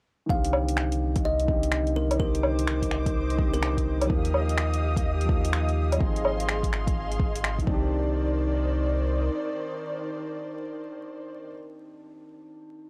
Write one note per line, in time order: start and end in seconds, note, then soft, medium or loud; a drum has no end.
0.26 4.08 C2 medium
0.26 1.43 D#3 medium
0.26 1.46 C4 medium
0.26 7.92 D#5 medium
0.26 kick loud
0.30 1.47 D3 medium
0.30 1.49 G4 medium
0.30 0.55 F5 medium
0.45 closed hi-hat soft
0.53 low woodblock medium
0.69 closed hi-hat medium
0.77 finger snap loud
0.92 closed hi-hat soft
1.16 kick loud
1.16 closed hi-hat medium
1.25 1.50 D#5 medium
1.40 closed hi-hat soft
1.45 2.14 D#3 medium
1.45 2.17 C4 medium
1.45 kick loud
1.50 2.18 D3 medium
1.50 2.20 G4 medium
1.63 closed hi-hat medium
1.72 finger snap loud
1.87 closed hi-hat soft
1.96 2.18 A#4 medium
2.11 closed hi-hat medium
2.11 low woodblock soft
2.16 3.33 D#3 medium
2.16 3.36 C4 medium
2.16 2.59 A#4 medium
2.16 4.08 D6 medium
2.16 kick loud
2.20 3.37 D3 medium
2.20 4.08 C5 medium
2.24 3.39 G4 medium
2.35 closed hi-hat soft
2.43 low woodblock medium
2.59 closed hi-hat medium
2.67 finger snap loud
2.82 kick medium
2.82 closed hi-hat soft
2.91 finger snap medium
3.06 kick loud
3.06 closed hi-hat medium
3.30 closed hi-hat soft
3.35 4.06 D#3 medium
3.35 4.07 C4 medium
3.35 kick loud
3.40 4.09 D3 medium
3.40 4.10 G4 medium
3.54 4.16 A#4 medium
3.54 closed hi-hat medium
3.63 finger snap loud
3.77 kick medium
3.77 closed hi-hat soft
4.01 closed hi-hat medium
4.01 low woodblock soft
4.06 5.23 F3 medium
4.06 5.26 A#3 medium
4.06 5.98 G4 medium
4.06 5.98 F5 medium
4.06 5.98 D#6 medium
4.06 kick loud
4.10 5.99 D#2 medium
4.10 5.28 D#4 medium
4.10 5.29 G4 medium
4.25 closed hi-hat soft
4.34 low woodblock medium
4.49 closed hi-hat medium
4.58 finger snap loud
4.74 closed hi-hat soft
4.97 kick loud
4.97 closed hi-hat medium
5.21 5.95 F3 medium
5.21 closed hi-hat soft
5.27 5.98 A#3 medium
5.27 5.99 D#4 medium
5.27 kick loud
5.33 6.00 G4 medium
5.45 closed hi-hat medium
5.53 finger snap loud
5.69 closed hi-hat soft
5.92 closed hi-hat medium
5.92 low woodblock soft
5.97 7.67 G#1 medium
5.97 7.16 F3 medium
5.97 7.17 C4 medium
5.97 kick loud
6.01 7.18 D#4 medium
6.01 7.66 G#4 medium
6.01 7.20 G#4 medium
6.01 7.66 F5 medium
6.01 7.66 C6 medium
6.16 closed hi-hat soft
6.25 low woodblock medium
6.40 closed hi-hat medium
6.49 finger snap loud
6.63 kick medium
6.63 closed hi-hat soft
6.73 finger snap medium
6.87 kick loud
6.87 closed hi-hat medium
7.12 closed hi-hat soft
7.19 kick loud
7.35 closed hi-hat medium
7.44 finger snap loud
7.59 11.46 D#3 medium
7.59 kick medium
7.59 closed hi-hat soft
7.66 9.30 C2 medium
7.66 11.50 D#3 medium
7.66 11.50 C4 medium
7.66 11.50 C5 medium
7.66 11.50 D5 medium
7.66 kick loud
7.70 11.54 D4 medium
7.70 11.58 G4 medium